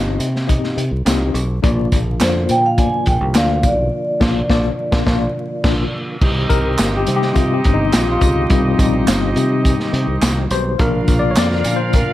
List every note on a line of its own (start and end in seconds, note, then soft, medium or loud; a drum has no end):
0.00 0.16 G1 medium
0.00 0.26 C4 medium
0.00 0.26 D#4 medium
0.00 0.26 G4 medium
0.00 0.26 D#5 medium
0.19 0.57 C3 loud
0.19 closed hi-hat medium
0.19 tambourine medium
0.36 snare soft
0.47 0.82 C4 medium
0.47 0.83 D#4 medium
0.47 0.83 G4 medium
0.47 0.83 D#5 medium
0.47 kick medium
0.47 closed hi-hat medium
0.47 tambourine soft
0.64 snare soft
0.77 0.90 C3 medium
0.77 closed hi-hat medium
0.77 tambourine soft
0.91 1.04 C2 medium
1.05 1.31 C2 medium
1.05 1.40 C4 medium
1.05 1.40 D#4 medium
1.05 1.40 G4 medium
1.05 1.41 D#5 medium
1.05 snare loud
1.05 clap medium
1.05 closed hi-hat medium
1.05 tambourine medium
1.34 1.59 B1 medium
1.34 closed hi-hat medium
1.34 tambourine medium
1.62 1.88 A#1 loud
1.62 6.17 D3 medium
1.62 6.18 F3 medium
1.62 1.97 A#3 medium
1.62 6.18 A#3 medium
1.62 1.97 D4 medium
1.62 1.98 F4 medium
1.62 6.17 F4 medium
1.62 1.98 D5 medium
1.62 kick loud
1.62 closed hi-hat medium
1.62 tambourine soft
1.92 2.17 A#1 medium
1.92 kick medium
1.92 closed hi-hat medium
1.92 tambourine soft
2.20 2.46 F2 medium
2.20 2.54 A#3 medium
2.20 2.55 D4 medium
2.20 2.55 F4 medium
2.20 2.51 C5 medium
2.20 2.55 D5 medium
2.20 snare loud
2.20 clap loud
2.20 closed hi-hat medium
2.20 tambourine loud
2.49 2.86 A#2 medium
2.49 2.65 G5 loud
2.49 closed hi-hat medium
2.49 tambourine medium
2.66 2.72 F5 loud
2.77 3.12 A#3 medium
2.77 3.12 D4 medium
2.77 3.12 F4 medium
2.77 3.13 D5 medium
2.77 3.05 G#5 loud
2.77 kick medium
2.77 closed hi-hat medium
2.77 tambourine soft
3.06 3.19 A#1 medium
3.06 3.20 G5 medium
3.06 kick medium
3.06 closed hi-hat medium
3.06 tambourine soft
3.21 3.33 C2 medium
3.34 3.60 D2 medium
3.34 3.69 A#3 medium
3.34 3.69 D4 medium
3.34 3.70 F4 medium
3.34 3.70 D5 medium
3.34 3.66 F5 medium
3.34 snare loud
3.34 clap medium
3.34 closed hi-hat medium
3.34 tambourine medium
3.63 3.88 B1 medium
3.63 5.90 D5 medium
3.63 kick medium
3.63 closed hi-hat medium
3.63 tambourine medium
4.20 4.40 A#1 loud
4.20 4.40 A#3 loud
4.20 4.41 D4 medium
4.20 4.41 F4 medium
4.20 4.41 D5 medium
4.20 kick loud
4.20 snare loud
4.20 crash medium
4.49 4.69 A#1 medium
4.49 4.69 A#3 medium
4.49 4.69 D4 loud
4.49 4.69 F4 loud
4.49 4.70 D5 loud
4.49 kick medium
4.49 snare loud
4.92 5.05 A#1 medium
4.92 5.04 A#3 medium
4.92 5.04 D4 medium
4.92 5.05 F4 medium
4.92 5.05 D5 medium
4.92 kick loud
4.92 snare loud
5.06 5.26 A#1 medium
5.06 5.26 A#3 medium
5.06 5.26 D4 medium
5.06 5.26 F4 medium
5.06 5.26 D5 medium
5.06 kick loud
5.06 snare medium
5.64 5.83 A#1 medium
5.64 5.83 A#3 medium
5.64 5.83 D4 medium
5.64 5.84 F4 medium
5.64 5.84 D5 medium
5.64 kick loud
5.64 snare loud
5.64 crash medium
6.21 6.46 C2 loud
6.21 10.76 D#3 medium
6.21 10.76 G3 medium
6.21 10.47 C4 medium
6.21 10.76 C4 medium
6.21 10.47 D#4 medium
6.21 10.47 G4 medium
6.21 10.76 G4 medium
6.21 10.47 D#5 medium
6.21 kick loud
6.21 crash medium
6.49 6.75 C2 medium
6.49 6.94 A#4 loud
6.49 kick medium
6.49 closed hi-hat medium
6.49 tambourine soft
6.78 7.03 G1 medium
6.78 snare loud
6.78 clap loud
6.78 closed hi-hat medium
6.78 tambourine medium
6.97 7.15 G4 medium
7.06 7.32 C3 medium
7.06 7.89 G3 medium
7.06 7.89 C4 soft
7.06 7.72 D#4 soft
7.06 closed hi-hat medium
7.06 tambourine medium
7.16 7.36 G4 medium
7.22 snare soft
7.35 7.60 C3 loud
7.35 7.53 F4 medium
7.35 kick medium
7.35 closed hi-hat medium
7.35 tambourine soft
7.54 7.74 G4 medium
7.64 7.90 G1 medium
7.64 kick medium
7.64 closed hi-hat medium
7.64 tambourine soft
7.74 7.92 D#4 medium
7.92 8.18 A#1 medium
7.92 8.11 F4 medium
7.92 snare loud
7.92 clap medium
7.92 closed hi-hat medium
7.92 tambourine medium
8.12 9.51 F4 medium
8.21 8.46 C#2 medium
8.21 kick medium
8.21 closed hi-hat medium
8.21 tambourine medium
8.49 8.75 C2 loud
8.49 8.75 G3 soft
8.49 8.76 C4 soft
8.49 8.76 D#4 medium
8.49 kick loud
8.49 closed hi-hat medium
8.49 tambourine soft
8.78 9.04 A#1 medium
8.78 10.75 G3 medium
8.78 10.75 C4 soft
8.78 10.75 D#4 medium
8.78 kick medium
8.78 closed hi-hat medium
8.78 tambourine soft
9.07 9.32 G1 medium
9.07 snare loud
9.07 clap medium
9.07 closed hi-hat medium
9.07 tambourine loud
9.36 9.73 C3 medium
9.36 closed hi-hat medium
9.36 tambourine medium
9.65 kick medium
9.65 closed hi-hat medium
9.65 tambourine soft
9.80 snare soft
9.93 10.06 C3 medium
9.93 closed hi-hat medium
10.07 10.20 C2 medium
10.22 10.47 C2 medium
10.22 snare loud
10.22 clap medium
10.22 closed hi-hat medium
10.22 tambourine medium
10.51 10.75 B1 medium
10.51 10.78 C5 medium
10.51 closed hi-hat medium
10.51 tambourine medium
10.79 11.04 A#1 loud
10.79 12.13 D3 medium
10.79 12.13 F3 medium
10.79 11.61 F3 medium
10.79 12.13 A#3 medium
10.79 11.62 A#3 soft
10.79 12.13 D4 medium
10.79 11.62 D4 medium
10.79 12.13 F4 medium
10.79 12.13 A#4 medium
10.79 11.19 A#4 medium
10.79 12.13 F5 medium
10.79 kick loud
10.79 closed hi-hat medium
11.08 11.33 A#1 medium
11.08 kick medium
11.08 closed hi-hat medium
11.08 tambourine soft
11.19 11.30 D5 loud
11.31 11.37 C#5 medium
11.36 11.61 F2 medium
11.36 11.77 D5 loud
11.36 snare loud
11.36 clap loud
11.36 closed hi-hat medium
11.36 tambourine loud
11.52 snare soft
11.64 12.02 A#2 loud
11.64 11.92 F3 soft
11.64 11.92 A#3 soft
11.64 11.92 D4 medium
11.64 closed hi-hat medium
11.64 tambourine medium
11.76 11.93 C5 medium
11.93 12.13 A#4 medium
11.93 kick medium
11.93 closed hi-hat medium
11.93 tambourine soft